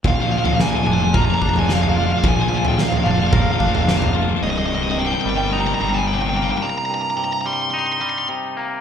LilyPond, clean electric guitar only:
\new Staff \with { instrumentName = "Clean electric guitar" } { \clef bass \time 4/4 \key bes \mixolydian \tempo 4 = 109 bes,8 f8 bes8 d'8 bes'8 d'8 bes8 f'8 | bes,8 f8 bes8 d'8 bes'8 d'8 bes8 f'8 | c,8 g,8 c8 g8 ees'8 g8 c8 bes8 | c,8 g,8 c8 g8 ees'8 g8 c8 bes8 | }